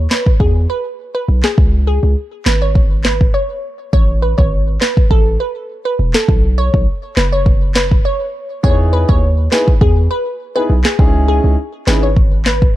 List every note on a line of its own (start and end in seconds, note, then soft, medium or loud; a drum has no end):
0.11 0.31 B4 medium
0.11 snare loud
0.11 clap medium
0.26 kick loud
0.40 0.67 E2 loud
0.40 0.51 G#4 medium
0.40 kick medium
0.70 0.80 B4 medium
1.15 1.24 B4 medium
1.28 1.43 B1 loud
1.43 1.53 G#4 medium
1.43 snare loud
1.43 clap medium
1.58 1.99 C#2 loud
1.58 kick loud
1.87 1.98 G#4 medium
2.03 2.15 C#2 loud
2.46 3.30 G#1 medium
2.46 2.57 B4 medium
2.46 snare loud
2.46 clap medium
2.62 2.71 C#5 medium
2.75 kick medium
3.04 3.15 B4 medium
3.04 snare loud
3.04 clap medium
3.21 kick medium
3.34 3.76 C#5 medium
3.93 4.34 A1 loud
3.93 4.04 C#5 loud
3.93 kick loud
4.22 4.33 B4 medium
4.38 4.78 G#1 medium
4.38 4.58 C#5 medium
4.38 kick loud
4.81 5.01 B4 medium
4.81 snare medium
4.81 clap medium
4.97 kick loud
5.11 5.38 A1 loud
5.11 5.21 A4 medium
5.11 kick medium
5.40 5.51 B4 medium
5.85 5.95 B4 medium
5.99 6.13 E1 loud
6.14 6.24 A4 medium
6.14 snare loud
6.14 clap medium
6.28 6.69 B1 loud
6.28 kick loud
6.58 6.68 C#5 medium
6.74 6.86 B1 loud
6.74 kick loud
7.17 8.01 F#1 medium
7.17 7.27 B4 medium
7.17 snare loud
7.17 clap medium
7.32 7.42 C#5 medium
7.46 kick medium
7.75 7.86 B4 medium
7.75 snare loud
7.75 clap medium
7.91 kick medium
8.05 8.47 C#5 medium
8.63 9.05 E2 loud
8.63 9.18 B3 medium
8.63 9.18 D#4 medium
8.63 9.18 E4 medium
8.63 9.18 G#4 loud
8.63 8.74 C#5 loud
8.63 kick loud
8.93 9.03 B4 medium
9.09 9.48 D#2 loud
9.09 9.29 C#5 medium
9.09 kick loud
9.52 9.69 B3 medium
9.52 9.69 D#4 medium
9.52 9.69 E4 medium
9.52 9.69 G#4 medium
9.52 9.72 B4 medium
9.52 snare loud
9.52 clap medium
9.68 kick loud
9.81 10.08 E2 loud
9.81 9.92 G#4 medium
9.81 kick medium
10.11 10.21 B4 medium
10.56 10.71 B3 medium
10.56 10.71 D#4 medium
10.56 10.71 E4 medium
10.56 10.71 G#4 medium
10.56 10.65 B4 medium
10.70 10.84 B1 loud
10.85 10.94 G#4 medium
10.85 snare loud
10.85 clap medium
10.99 11.40 C#2 loud
10.99 11.53 C#4 medium
10.99 11.53 D#4 medium
10.99 11.53 E4 medium
10.99 11.54 G#4 loud
10.99 kick loud
11.28 11.39 G#4 medium
11.44 11.57 C#2 loud
11.87 12.71 G#1 medium
11.87 12.04 C#4 medium
11.87 12.04 D#4 medium
11.87 12.04 E4 medium
11.87 12.04 G#4 medium
11.87 11.98 B4 medium
11.87 snare loud
11.87 clap medium
12.03 12.12 C#5 medium
12.16 kick medium
12.46 12.57 B4 medium
12.46 snare loud
12.46 clap medium
12.62 kick medium